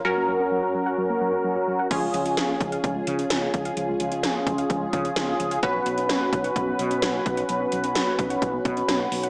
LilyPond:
<<
  \new Staff \with { instrumentName = "Analog polysynth" } { \time 4/4 \key cis \mixolydian \tempo 4 = 129 <cis' fis' ais'>1 | <cis' eis' gis'>1~ | <cis' eis' gis'>1 | <cis' fis' b'>1~ |
<cis' fis' b'>1 | }
  \new Staff \with { instrumentName = "Synth arpeggio sound" } { \clef bass \time 4/4 \key cis \mixolydian fis16 ais16 fis16 cis'16 fis16 fis'16 fis16 fis''16 fis16 ais16 fis16 cis'16 fis16 fis'16 fis16 fis''16 | eis16 gis16 eis16 cis'16 eis16 eis'16 eis16 eis''16 eis16 gis16 eis16 cis'16 eis16 eis'16 eis16 eis''16 | eis16 gis16 eis16 cis'16 eis16 eis'16 eis16 eis''16 eis16 gis16 eis16 cis'16 eis16 eis'16 eis16 eis''16 | fis16 b16 fis16 cis'16 fis16 fis'16 fis16 fis''16 fis16 b16 fis16 cis'16 fis16 fis'16 fis16 fis''16 |
fis16 b16 fis16 cis'16 fis16 fis'16 fis16 fis''16 fis16 b16 fis16 cis'16 fis16 fis'16 fis16 fis''16 | }
  \new Staff \with { instrumentName = "Fretless electric bass" } { \clef bass \time 4/4 \key cis \mixolydian r1 | cis,8 cis,8. r16 cis,8 cis,8 cis8 cis,8 cis,8 | cis,8 cis,8. r16 cis,8 cis,8 cis8 cis,8 cis,8 | b,,8 b,,8. r16 b,,8 b,,8 b,8 b,,8 b,,8 |
b,,8 b,,8. r16 b,,8 b,,8 b,8 b,,8 b,,8 | }
  \new DrumStaff \with { instrumentName = "Drums" } \drummode { \time 4/4 r4 r4 r4 r4 | <cymc hh bd>8 hh16 hh16 <hh sn>8 <hh bd>16 hh16 <hh bd>8 hh16 hh16 <hh sn>8 <hh bd>16 hh16 | hh8 hh16 hh16 <hh sn>8 <hh bd>16 hh16 <hh bd>8 <hh bd>16 hh16 <hh sn>8 hh16 hh16 | <hh bd>8 hh16 hh16 <hh sn>8 <hh bd>16 hh16 <hh bd>8 hh16 hh16 <hh sn>8 <hh bd>16 hh16 |
hh8 hh16 hh16 <hh sn>8 <hh bd>16 hh16 <hh bd>8 <hh bd>16 hh16 <hh sn>8 hho16 hh16 | }
>>